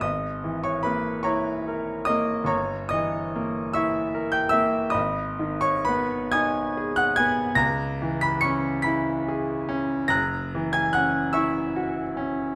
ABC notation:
X:1
M:6/8
L:1/16
Q:3/8=48
K:G#m
V:1 name="Grand piano"
[dd']3 [cc'] [Bb]2 [cac']4 [dd']2 | [_d_b_d']2 [^d^d']4 [e_d'e']3 [=g=g'] [ee']2 | [dbd']3 [cc'] [Bb]2 [gd'g']3 [ff'] [gg']2 | [aa']3 [bb'] [c'c'']2 [bb']6 |
[af'a']3 [gg'] [ff']2 [ec'e']2 z4 |]
V:2 name="Grand piano"
G,,,2 E,2 A,2 E2 A2 A,2 | =G,,,2 E,2 _B,2 E2 _B2 B,2 | G,,,2 D,2 B,2 D2 G2 B,2 | C,,2 E,2 C2 E2 G2 C2 |
F,,,2 E,2 C2 E2 F2 C2 |]